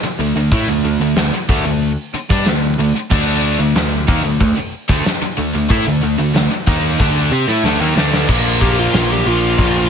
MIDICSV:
0, 0, Header, 1, 9, 480
1, 0, Start_track
1, 0, Tempo, 647948
1, 380, Time_signature, 4, 2, 24, 8
1, 7329, End_track
2, 0, Start_track
2, 0, Title_t, "Lead electric guitar"
2, 0, Program_c, 0, 29
2, 6387, Note_on_c, 0, 67, 84
2, 6512, Note_off_c, 0, 67, 0
2, 6512, Note_on_c, 0, 65, 78
2, 6737, Note_off_c, 0, 65, 0
2, 6751, Note_on_c, 0, 67, 82
2, 6871, Note_off_c, 0, 67, 0
2, 6871, Note_on_c, 0, 65, 85
2, 7329, Note_off_c, 0, 65, 0
2, 7329, End_track
3, 0, Start_track
3, 0, Title_t, "Distorted electric guitar"
3, 0, Program_c, 1, 30
3, 6161, Note_on_c, 1, 62, 93
3, 6840, Note_off_c, 1, 62, 0
3, 6849, Note_on_c, 1, 62, 76
3, 7329, Note_off_c, 1, 62, 0
3, 7329, End_track
4, 0, Start_track
4, 0, Title_t, "Overdriven electric guitar"
4, 0, Program_c, 2, 29
4, 139, Note_on_c, 2, 50, 62
4, 145, Note_on_c, 2, 57, 68
4, 254, Note_off_c, 2, 50, 0
4, 257, Note_off_c, 2, 57, 0
4, 263, Note_on_c, 2, 50, 60
4, 266, Note_on_c, 2, 57, 67
4, 380, Note_off_c, 2, 57, 0
4, 382, Note_off_c, 2, 50, 0
4, 389, Note_on_c, 2, 57, 92
4, 393, Note_on_c, 2, 64, 105
4, 497, Note_off_c, 2, 57, 0
4, 499, Note_off_c, 2, 64, 0
4, 510, Note_on_c, 2, 50, 61
4, 511, Note_on_c, 2, 57, 64
4, 619, Note_off_c, 2, 50, 0
4, 622, Note_off_c, 2, 57, 0
4, 628, Note_on_c, 2, 50, 61
4, 631, Note_on_c, 2, 57, 76
4, 741, Note_off_c, 2, 50, 0
4, 741, Note_off_c, 2, 57, 0
4, 750, Note_on_c, 2, 50, 64
4, 750, Note_on_c, 2, 57, 70
4, 861, Note_off_c, 2, 57, 0
4, 862, Note_off_c, 2, 50, 0
4, 870, Note_on_c, 2, 57, 71
4, 871, Note_on_c, 2, 50, 66
4, 981, Note_off_c, 2, 50, 0
4, 985, Note_off_c, 2, 57, 0
4, 1108, Note_on_c, 2, 50, 88
4, 1109, Note_on_c, 2, 57, 98
4, 1214, Note_off_c, 2, 50, 0
4, 1218, Note_off_c, 2, 57, 0
4, 1223, Note_on_c, 2, 50, 65
4, 1228, Note_on_c, 2, 57, 70
4, 1414, Note_off_c, 2, 50, 0
4, 1417, Note_off_c, 2, 57, 0
4, 1710, Note_on_c, 2, 55, 90
4, 1715, Note_on_c, 2, 62, 90
4, 1818, Note_off_c, 2, 55, 0
4, 1821, Note_off_c, 2, 62, 0
4, 1833, Note_on_c, 2, 50, 64
4, 1838, Note_on_c, 2, 57, 71
4, 2019, Note_off_c, 2, 50, 0
4, 2021, Note_off_c, 2, 57, 0
4, 2066, Note_on_c, 2, 50, 65
4, 2070, Note_on_c, 2, 57, 67
4, 2183, Note_off_c, 2, 50, 0
4, 2186, Note_off_c, 2, 57, 0
4, 2309, Note_on_c, 2, 50, 91
4, 2312, Note_on_c, 2, 57, 104
4, 2314, Note_on_c, 2, 62, 103
4, 2658, Note_off_c, 2, 50, 0
4, 2659, Note_off_c, 2, 57, 0
4, 2660, Note_off_c, 2, 62, 0
4, 2669, Note_on_c, 2, 50, 60
4, 2669, Note_on_c, 2, 57, 78
4, 2776, Note_off_c, 2, 50, 0
4, 2779, Note_off_c, 2, 57, 0
4, 2785, Note_on_c, 2, 50, 71
4, 2788, Note_on_c, 2, 57, 71
4, 2974, Note_off_c, 2, 50, 0
4, 2976, Note_off_c, 2, 57, 0
4, 3024, Note_on_c, 2, 51, 92
4, 3031, Note_on_c, 2, 58, 103
4, 3135, Note_off_c, 2, 51, 0
4, 3138, Note_off_c, 2, 58, 0
4, 3139, Note_on_c, 2, 50, 64
4, 3145, Note_on_c, 2, 57, 68
4, 3259, Note_off_c, 2, 50, 0
4, 3262, Note_off_c, 2, 57, 0
4, 3270, Note_on_c, 2, 50, 64
4, 3273, Note_on_c, 2, 57, 73
4, 3379, Note_off_c, 2, 50, 0
4, 3386, Note_off_c, 2, 57, 0
4, 3625, Note_on_c, 2, 50, 96
4, 3631, Note_on_c, 2, 57, 91
4, 3735, Note_off_c, 2, 50, 0
4, 3737, Note_off_c, 2, 57, 0
4, 3985, Note_on_c, 2, 50, 64
4, 3992, Note_on_c, 2, 57, 73
4, 4093, Note_off_c, 2, 50, 0
4, 4099, Note_off_c, 2, 57, 0
4, 4102, Note_on_c, 2, 50, 68
4, 4108, Note_on_c, 2, 57, 74
4, 4207, Note_off_c, 2, 57, 0
4, 4216, Note_on_c, 2, 57, 95
4, 4220, Note_off_c, 2, 50, 0
4, 4224, Note_on_c, 2, 64, 103
4, 4330, Note_off_c, 2, 57, 0
4, 4334, Note_off_c, 2, 64, 0
4, 4341, Note_on_c, 2, 50, 66
4, 4342, Note_on_c, 2, 57, 67
4, 4454, Note_off_c, 2, 57, 0
4, 4455, Note_off_c, 2, 50, 0
4, 4463, Note_on_c, 2, 57, 76
4, 4464, Note_on_c, 2, 50, 67
4, 4577, Note_off_c, 2, 57, 0
4, 4581, Note_off_c, 2, 50, 0
4, 4586, Note_on_c, 2, 57, 68
4, 4589, Note_on_c, 2, 50, 61
4, 4690, Note_off_c, 2, 50, 0
4, 4693, Note_off_c, 2, 57, 0
4, 4699, Note_on_c, 2, 50, 62
4, 4702, Note_on_c, 2, 57, 68
4, 4818, Note_off_c, 2, 50, 0
4, 4820, Note_off_c, 2, 57, 0
4, 4941, Note_on_c, 2, 51, 94
4, 4942, Note_on_c, 2, 63, 90
4, 4944, Note_on_c, 2, 58, 91
4, 5172, Note_off_c, 2, 51, 0
4, 5172, Note_off_c, 2, 63, 0
4, 5173, Note_off_c, 2, 58, 0
4, 5179, Note_on_c, 2, 50, 96
4, 5187, Note_on_c, 2, 57, 101
4, 5188, Note_on_c, 2, 62, 100
4, 5410, Note_off_c, 2, 50, 0
4, 5414, Note_off_c, 2, 57, 0
4, 5415, Note_off_c, 2, 62, 0
4, 5424, Note_on_c, 2, 60, 89
4, 5431, Note_on_c, 2, 67, 88
4, 5533, Note_off_c, 2, 60, 0
4, 5536, Note_off_c, 2, 67, 0
4, 5537, Note_on_c, 2, 57, 87
4, 5544, Note_on_c, 2, 64, 94
4, 5649, Note_off_c, 2, 57, 0
4, 5653, Note_off_c, 2, 64, 0
4, 5663, Note_on_c, 2, 50, 81
4, 5666, Note_on_c, 2, 57, 98
4, 5772, Note_off_c, 2, 50, 0
4, 5774, Note_off_c, 2, 57, 0
4, 5778, Note_on_c, 2, 51, 83
4, 5785, Note_on_c, 2, 58, 89
4, 5890, Note_off_c, 2, 51, 0
4, 5893, Note_off_c, 2, 58, 0
4, 5894, Note_on_c, 2, 50, 91
4, 5897, Note_on_c, 2, 57, 95
4, 5900, Note_on_c, 2, 62, 86
4, 6127, Note_off_c, 2, 50, 0
4, 6129, Note_off_c, 2, 57, 0
4, 6131, Note_off_c, 2, 62, 0
4, 6144, Note_on_c, 2, 46, 91
4, 6148, Note_on_c, 2, 53, 87
4, 6148, Note_on_c, 2, 58, 104
4, 6370, Note_off_c, 2, 46, 0
4, 6371, Note_off_c, 2, 53, 0
4, 6379, Note_on_c, 2, 46, 82
4, 6380, Note_on_c, 2, 53, 84
4, 6381, Note_off_c, 2, 58, 0
4, 6384, Note_on_c, 2, 58, 94
4, 6609, Note_off_c, 2, 46, 0
4, 6610, Note_off_c, 2, 53, 0
4, 6617, Note_on_c, 2, 46, 90
4, 6619, Note_off_c, 2, 58, 0
4, 6619, Note_on_c, 2, 53, 97
4, 6622, Note_on_c, 2, 58, 98
4, 6847, Note_off_c, 2, 46, 0
4, 6847, Note_off_c, 2, 53, 0
4, 6856, Note_on_c, 2, 46, 77
4, 6856, Note_on_c, 2, 53, 83
4, 6860, Note_off_c, 2, 58, 0
4, 6863, Note_on_c, 2, 58, 85
4, 7091, Note_off_c, 2, 46, 0
4, 7093, Note_off_c, 2, 53, 0
4, 7094, Note_off_c, 2, 58, 0
4, 7100, Note_on_c, 2, 46, 94
4, 7102, Note_on_c, 2, 53, 100
4, 7103, Note_on_c, 2, 58, 98
4, 7324, Note_off_c, 2, 46, 0
4, 7326, Note_off_c, 2, 53, 0
4, 7329, Note_off_c, 2, 58, 0
4, 7329, End_track
5, 0, Start_track
5, 0, Title_t, "Picked electric bass"
5, 0, Program_c, 3, 34
5, 140, Note_on_c, 3, 38, 82
5, 251, Note_off_c, 3, 38, 0
5, 257, Note_on_c, 3, 38, 73
5, 370, Note_off_c, 3, 38, 0
5, 384, Note_on_c, 3, 45, 87
5, 494, Note_off_c, 3, 45, 0
5, 499, Note_on_c, 3, 38, 81
5, 611, Note_off_c, 3, 38, 0
5, 620, Note_on_c, 3, 38, 75
5, 732, Note_off_c, 3, 38, 0
5, 737, Note_on_c, 3, 38, 74
5, 851, Note_off_c, 3, 38, 0
5, 861, Note_on_c, 3, 38, 76
5, 972, Note_off_c, 3, 38, 0
5, 1105, Note_on_c, 3, 38, 91
5, 1215, Note_off_c, 3, 38, 0
5, 1225, Note_on_c, 3, 38, 79
5, 1446, Note_off_c, 3, 38, 0
5, 1706, Note_on_c, 3, 43, 90
5, 1815, Note_off_c, 3, 43, 0
5, 1822, Note_on_c, 3, 38, 82
5, 2045, Note_off_c, 3, 38, 0
5, 2060, Note_on_c, 3, 38, 81
5, 2172, Note_off_c, 3, 38, 0
5, 2305, Note_on_c, 3, 38, 91
5, 2637, Note_off_c, 3, 38, 0
5, 2659, Note_on_c, 3, 38, 75
5, 2771, Note_off_c, 3, 38, 0
5, 2782, Note_on_c, 3, 38, 83
5, 3004, Note_off_c, 3, 38, 0
5, 3024, Note_on_c, 3, 39, 93
5, 3134, Note_off_c, 3, 39, 0
5, 3144, Note_on_c, 3, 38, 79
5, 3254, Note_off_c, 3, 38, 0
5, 3263, Note_on_c, 3, 38, 81
5, 3373, Note_off_c, 3, 38, 0
5, 3624, Note_on_c, 3, 38, 93
5, 3733, Note_off_c, 3, 38, 0
5, 3988, Note_on_c, 3, 38, 79
5, 4095, Note_off_c, 3, 38, 0
5, 4108, Note_on_c, 3, 38, 72
5, 4215, Note_off_c, 3, 38, 0
5, 4223, Note_on_c, 3, 45, 90
5, 4332, Note_off_c, 3, 45, 0
5, 4346, Note_on_c, 3, 38, 79
5, 4454, Note_off_c, 3, 38, 0
5, 4466, Note_on_c, 3, 38, 74
5, 4574, Note_off_c, 3, 38, 0
5, 4583, Note_on_c, 3, 38, 77
5, 4692, Note_off_c, 3, 38, 0
5, 4700, Note_on_c, 3, 38, 83
5, 4810, Note_off_c, 3, 38, 0
5, 4942, Note_on_c, 3, 39, 94
5, 5162, Note_off_c, 3, 39, 0
5, 5184, Note_on_c, 3, 38, 99
5, 5404, Note_off_c, 3, 38, 0
5, 5419, Note_on_c, 3, 48, 92
5, 5529, Note_off_c, 3, 48, 0
5, 5540, Note_on_c, 3, 45, 92
5, 5650, Note_off_c, 3, 45, 0
5, 5655, Note_on_c, 3, 38, 88
5, 5767, Note_off_c, 3, 38, 0
5, 5776, Note_on_c, 3, 39, 92
5, 5888, Note_off_c, 3, 39, 0
5, 5894, Note_on_c, 3, 38, 92
5, 6118, Note_off_c, 3, 38, 0
5, 6141, Note_on_c, 3, 34, 88
5, 6560, Note_off_c, 3, 34, 0
5, 6618, Note_on_c, 3, 34, 82
5, 6828, Note_off_c, 3, 34, 0
5, 6859, Note_on_c, 3, 34, 83
5, 7069, Note_off_c, 3, 34, 0
5, 7100, Note_on_c, 3, 34, 86
5, 7309, Note_off_c, 3, 34, 0
5, 7329, End_track
6, 0, Start_track
6, 0, Title_t, "Muted distorted electric guitar strokes"
6, 28, Note_on_c, 9, 29, 58
6, 102, Note_off_c, 9, 29, 0
6, 993, Note_on_c, 9, 29, 62
6, 1067, Note_off_c, 9, 29, 0
6, 1590, Note_on_c, 9, 29, 59
6, 1664, Note_off_c, 9, 29, 0
6, 2197, Note_on_c, 9, 29, 57
6, 2271, Note_off_c, 9, 29, 0
6, 3380, Note_on_c, 9, 29, 60
6, 3454, Note_off_c, 9, 29, 0
6, 3747, Note_on_c, 9, 29, 57
6, 3821, Note_off_c, 9, 29, 0
6, 3867, Note_on_c, 9, 29, 57
6, 3942, Note_off_c, 9, 29, 0
6, 4821, Note_on_c, 9, 29, 63
6, 4895, Note_off_c, 9, 29, 0
6, 7329, End_track
7, 0, Start_track
7, 0, Title_t, "Muted overdriven electric guitar strokes"
7, 25, Note_on_c, 9, 29, 58
7, 99, Note_off_c, 9, 29, 0
7, 989, Note_on_c, 9, 29, 56
7, 1064, Note_off_c, 9, 29, 0
7, 1590, Note_on_c, 9, 29, 58
7, 1664, Note_off_c, 9, 29, 0
7, 2193, Note_on_c, 9, 29, 59
7, 2267, Note_off_c, 9, 29, 0
7, 3388, Note_on_c, 9, 29, 56
7, 3462, Note_off_c, 9, 29, 0
7, 3747, Note_on_c, 9, 29, 59
7, 3821, Note_off_c, 9, 29, 0
7, 3872, Note_on_c, 9, 29, 57
7, 3946, Note_off_c, 9, 29, 0
7, 4825, Note_on_c, 9, 29, 58
7, 4900, Note_off_c, 9, 29, 0
7, 7329, End_track
8, 0, Start_track
8, 0, Title_t, "Muted picked electric bass strokes"
8, 23, Note_on_c, 9, 29, 39
8, 97, Note_off_c, 9, 29, 0
8, 988, Note_on_c, 9, 29, 42
8, 1062, Note_off_c, 9, 29, 0
8, 1582, Note_on_c, 9, 29, 40
8, 1656, Note_off_c, 9, 29, 0
8, 2183, Note_on_c, 9, 29, 39
8, 2257, Note_off_c, 9, 29, 0
8, 3744, Note_on_c, 9, 29, 42
8, 3818, Note_off_c, 9, 29, 0
8, 3869, Note_on_c, 9, 29, 41
8, 3943, Note_off_c, 9, 29, 0
8, 4820, Note_on_c, 9, 29, 40
8, 4894, Note_off_c, 9, 29, 0
8, 7329, End_track
9, 0, Start_track
9, 0, Title_t, "Drums"
9, 381, Note_on_c, 9, 46, 62
9, 383, Note_on_c, 9, 36, 100
9, 456, Note_off_c, 9, 46, 0
9, 457, Note_off_c, 9, 36, 0
9, 860, Note_on_c, 9, 46, 57
9, 864, Note_on_c, 9, 38, 114
9, 934, Note_off_c, 9, 46, 0
9, 938, Note_off_c, 9, 38, 0
9, 1103, Note_on_c, 9, 36, 109
9, 1178, Note_off_c, 9, 36, 0
9, 1348, Note_on_c, 9, 46, 59
9, 1422, Note_off_c, 9, 46, 0
9, 1705, Note_on_c, 9, 36, 99
9, 1708, Note_on_c, 9, 38, 31
9, 1779, Note_off_c, 9, 36, 0
9, 1782, Note_off_c, 9, 38, 0
9, 1822, Note_on_c, 9, 46, 53
9, 1826, Note_on_c, 9, 38, 102
9, 1896, Note_off_c, 9, 46, 0
9, 1900, Note_off_c, 9, 38, 0
9, 2305, Note_on_c, 9, 49, 97
9, 2306, Note_on_c, 9, 36, 97
9, 2379, Note_off_c, 9, 49, 0
9, 2380, Note_off_c, 9, 36, 0
9, 2782, Note_on_c, 9, 46, 64
9, 2786, Note_on_c, 9, 38, 114
9, 2856, Note_off_c, 9, 46, 0
9, 2860, Note_off_c, 9, 38, 0
9, 3024, Note_on_c, 9, 36, 104
9, 3099, Note_off_c, 9, 36, 0
9, 3264, Note_on_c, 9, 36, 86
9, 3265, Note_on_c, 9, 46, 59
9, 3338, Note_off_c, 9, 36, 0
9, 3339, Note_off_c, 9, 46, 0
9, 3624, Note_on_c, 9, 36, 98
9, 3630, Note_on_c, 9, 38, 31
9, 3698, Note_off_c, 9, 36, 0
9, 3704, Note_off_c, 9, 38, 0
9, 3747, Note_on_c, 9, 46, 62
9, 3751, Note_on_c, 9, 38, 105
9, 3821, Note_off_c, 9, 46, 0
9, 3825, Note_off_c, 9, 38, 0
9, 4224, Note_on_c, 9, 36, 104
9, 4224, Note_on_c, 9, 46, 62
9, 4298, Note_off_c, 9, 36, 0
9, 4298, Note_off_c, 9, 46, 0
9, 4708, Note_on_c, 9, 46, 61
9, 4712, Note_on_c, 9, 38, 112
9, 4782, Note_off_c, 9, 46, 0
9, 4786, Note_off_c, 9, 38, 0
9, 4943, Note_on_c, 9, 36, 103
9, 5017, Note_off_c, 9, 36, 0
9, 5183, Note_on_c, 9, 36, 100
9, 5184, Note_on_c, 9, 46, 59
9, 5258, Note_off_c, 9, 36, 0
9, 5258, Note_off_c, 9, 46, 0
9, 5552, Note_on_c, 9, 38, 30
9, 5626, Note_off_c, 9, 38, 0
9, 5668, Note_on_c, 9, 38, 61
9, 5742, Note_off_c, 9, 38, 0
9, 5907, Note_on_c, 9, 38, 94
9, 5981, Note_off_c, 9, 38, 0
9, 6026, Note_on_c, 9, 38, 85
9, 6100, Note_off_c, 9, 38, 0
9, 6137, Note_on_c, 9, 57, 107
9, 6140, Note_on_c, 9, 36, 104
9, 6211, Note_off_c, 9, 57, 0
9, 6214, Note_off_c, 9, 36, 0
9, 6381, Note_on_c, 9, 36, 77
9, 6455, Note_off_c, 9, 36, 0
9, 6622, Note_on_c, 9, 46, 58
9, 6626, Note_on_c, 9, 38, 101
9, 6697, Note_off_c, 9, 46, 0
9, 6700, Note_off_c, 9, 38, 0
9, 7100, Note_on_c, 9, 36, 80
9, 7103, Note_on_c, 9, 46, 59
9, 7174, Note_off_c, 9, 36, 0
9, 7177, Note_off_c, 9, 46, 0
9, 7329, End_track
0, 0, End_of_file